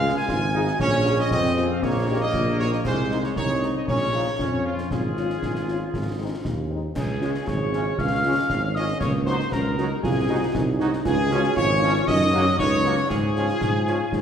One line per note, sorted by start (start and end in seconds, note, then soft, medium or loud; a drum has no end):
0.00 0.20 C#2 loud
0.00 0.24 G#3 loud
0.00 0.12 G#3 medium
0.00 0.12 F4 medium
0.00 0.12 G#4 medium
0.00 0.13 F5 loud
0.17 0.81 G#5 loud
0.28 0.71 G#1 loud
0.28 0.40 F4 medium
0.28 concert bass drum medium
0.28 snare medium
0.53 0.63 G#3 medium
0.53 0.65 D#4 medium
0.53 0.63 F4 medium
0.53 0.63 G#4 medium
0.67 snare medium
0.79 1.23 A#1 loud
0.79 1.27 C#4 loud
0.79 1.16 C#5 loud
0.79 concert bass drum medium
0.79 snare medium
1.05 1.15 A#3 medium
1.05 1.15 F4 medium
1.05 1.15 G#4 medium
1.05 snare medium
1.18 1.31 D#5 loud
1.18 snare medium
1.31 1.74 F2 loud
1.31 1.79 C4 medium
1.31 1.68 D#5 loud
1.31 concert bass drum medium
1.31 snare medium
1.44 snare medium
1.57 1.66 A#3 medium
1.57 1.66 F4 medium
1.57 1.66 G#4 medium
1.57 snare medium
1.71 1.83 F5 medium
1.82 2.25 A#1 loud
1.82 2.85 A#3 loud
1.82 2.21 C#5 loud
1.82 concert bass drum medium
1.82 snare medium
2.08 2.17 A#3 medium
2.08 2.18 D#4 medium
2.08 2.17 G4 medium
2.21 2.57 D#5 loud
2.34 2.77 A#1 loud
2.34 concert bass drum medium
2.34 snare medium
2.60 2.69 A#3 medium
2.60 2.69 D#4 medium
2.60 2.69 G4 medium
2.60 2.72 C#5 loud
2.72 2.78 D#5 loud
2.72 snare medium
2.85 3.28 C2 medium
2.85 3.33 G#3 medium
2.85 3.21 C5 loud
2.85 concert bass drum medium
2.85 snare medium
2.85 crash soft
3.11 3.21 G#3 medium
3.11 3.21 D#4 medium
3.11 snare medium
3.24 3.31 C#5 loud
3.24 snare medium
3.36 3.80 C2 medium
3.36 3.84 D#4 medium
3.36 3.72 C#5 loud
3.36 concert bass drum medium
3.36 snare medium
3.49 snare medium
3.62 3.72 G#3 medium
3.62 3.72 D#4 medium
3.62 snare medium
3.76 3.88 D#5 medium
3.88 4.31 A#1 medium
3.88 4.12 C#4 medium
3.88 4.61 C#5 loud
3.88 concert bass drum medium
3.88 snare medium
4.14 4.23 F3 medium
4.14 4.23 C#4 medium
4.14 4.26 D#4 medium
4.14 4.23 F4 medium
4.39 4.82 F2 medium
4.39 4.87 C#4 medium
4.39 concert bass drum medium
4.39 snare medium
4.65 4.75 F3 medium
4.65 4.75 C#4 medium
4.65 4.89 F4 medium
4.65 4.75 F4 medium
4.78 snare medium
4.91 5.34 G#1 medium
4.91 6.66 F4 medium
4.91 6.66 G#4 medium
4.91 concert bass drum medium
4.91 snare medium
5.17 5.26 G#3 medium
5.17 5.26 C#4 medium
5.17 5.26 F4 medium
5.17 snare soft
5.30 snare medium
5.42 5.85 G#1 medium
5.42 concert bass drum medium
5.42 snare medium
5.55 snare medium
5.68 5.77 G#3 medium
5.68 5.78 C#4 medium
5.68 5.78 F4 medium
5.68 snare soft
5.94 6.32 G#1 medium
5.94 concert bass drum medium
5.94 snare medium
6.20 6.29 G#3 medium
6.20 6.29 C4 medium
6.20 6.29 D#4 medium
6.45 6.88 D#2 medium
6.45 concert bass drum medium
6.45 snare medium
6.70 6.80 G#3 medium
6.70 6.80 C4 medium
6.70 6.80 D#4 medium
6.96 7.39 C#2 medium
6.96 7.20 C#4 medium
6.96 7.44 G#4 loud
6.96 7.49 G#5 medium
6.96 concert bass drum medium
6.96 snare medium
6.96 crash medium
7.21 7.30 G#3 medium
7.21 7.31 G#3 medium
7.21 7.31 C#4 medium
7.21 7.31 F4 medium
7.21 7.49 F4 medium
7.21 snare medium
7.34 snare medium
7.47 7.90 G#1 medium
7.47 8.00 G#4 medium
7.47 7.99 C#5 loud
7.47 7.97 C#6 medium
7.47 concert bass drum medium
7.47 snare medium
7.73 7.82 G#3 medium
7.73 7.82 C#4 medium
7.73 7.82 F4 medium
7.73 snare medium
7.98 8.41 C#2 medium
7.98 8.26 F4 medium
7.98 8.76 F5 loud
7.98 8.76 F6 loud
7.98 concert bass drum medium
7.98 snare medium
8.24 8.34 G#3 medium
8.24 8.33 G#3 medium
8.24 9.03 C#4 medium
8.24 8.33 C#4 medium
8.24 8.34 C#4 medium
8.24 8.34 F4 medium
8.50 8.93 G#1 medium
8.50 concert bass drum medium
8.50 snare medium
8.75 8.85 G#3 medium
8.75 8.84 G#3 medium
8.75 8.85 C#4 medium
8.75 8.84 C#4 medium
8.75 8.85 F4 medium
8.75 8.99 D#5 loud
8.75 9.01 D#6 medium
8.75 snare medium
8.88 snare medium
9.00 9.44 C#2 medium
9.00 9.51 A#3 medium
9.00 9.12 C#5 loud
9.00 9.07 C#6 medium
9.00 concert bass drum medium
9.00 snare medium
9.00 crash soft
9.26 9.36 F#3 medium
9.26 9.36 D#4 medium
9.26 9.36 F#4 medium
9.26 9.50 C5 loud
9.26 9.50 C6 medium
9.26 snare medium
9.40 snare medium
9.52 9.95 C#2 medium
9.52 9.64 C#4 medium
9.52 10.03 A#4 loud
9.52 9.99 A#5 medium
9.52 concert bass drum medium
9.52 snare medium
9.77 9.86 F#3 medium
9.77 9.87 F#3 medium
9.77 9.87 D#4 medium
9.77 9.89 D#4 medium
9.77 9.87 F#4 medium
9.77 snare medium
10.02 10.46 C2 loud
10.02 10.56 F4 loud
10.02 10.76 G#4 loud
10.02 10.76 G#5 loud
10.02 concert bass drum medium
10.02 snare medium
10.28 10.37 F#3 medium
10.28 10.38 G#3 medium
10.28 10.38 D#4 medium
10.28 10.39 F#4 medium
10.54 10.97 C2 loud
10.54 11.05 D#4 medium
10.54 concert bass drum medium
10.54 snare medium
10.80 10.89 F#3 medium
10.80 10.89 G#3 medium
10.80 10.89 D#4 medium
10.80 10.89 F#4 medium
10.80 snare medium
10.93 snare medium
11.05 11.48 C#2 loud
11.05 11.33 F4 loud
11.05 11.53 G#4 loud
11.05 11.53 G#5 loud
11.05 concert bass drum medium
11.05 snare medium
11.05 crash soft
11.31 11.40 F3 medium
11.31 11.40 G#3 medium
11.31 11.40 C#4 medium
11.31 11.40 F4 medium
11.31 11.56 F#4 loud
11.31 snare medium
11.44 snare medium
11.56 11.99 G#1 loud
11.56 12.09 F4 loud
11.56 12.04 C#5 loud
11.56 12.09 C#6 loud
11.56 concert bass drum medium
11.56 snare medium
11.82 11.91 F3 medium
11.82 11.92 G#3 medium
11.82 11.91 C#4 medium
11.82 11.92 C#4 medium
11.82 11.91 F4 medium
11.82 snare medium
12.07 12.50 F#2 loud
12.07 12.32 D#4 loud
12.07 12.55 D#5 loud
12.07 12.61 D#6 loud
12.07 concert bass drum medium
12.07 snare medium
12.33 12.43 F#3 loud
12.33 12.43 A#3 medium
12.33 12.42 A#3 medium
12.33 12.57 C#4 medium
12.33 12.43 C#4 medium
12.33 12.43 F#4 medium
12.59 13.02 C#2 loud
12.59 12.83 D#4 medium
12.59 13.07 C#5 loud
12.59 13.09 C#6 loud
12.59 concert bass drum medium
12.59 snare medium
12.84 12.94 F#3 medium
12.84 12.94 A#3 medium
12.84 13.10 C#4 medium
12.84 12.94 C#4 medium
12.84 12.94 F#4 medium
12.84 snare medium
12.97 snare medium
13.09 13.53 G#2 medium
13.09 14.22 F4 loud
13.09 14.22 G#4 loud
13.09 14.22 G#5 loud
13.09 concert bass drum medium
13.09 snare medium
13.09 crash soft
13.36 13.45 F3 medium
13.36 13.45 G#3 medium
13.36 13.45 C#4 medium
13.36 13.45 F4 medium
13.36 snare medium
13.49 snare medium
13.61 13.99 G#2 medium
13.61 concert bass drum medium
13.61 snare medium
13.86 13.96 F3 medium
13.86 13.97 G#3 medium
13.86 13.96 C#4 medium
13.86 13.97 C#4 medium
13.86 13.97 F4 medium
13.86 snare medium
14.12 14.22 G#2 medium
14.12 concert bass drum medium
14.12 snare medium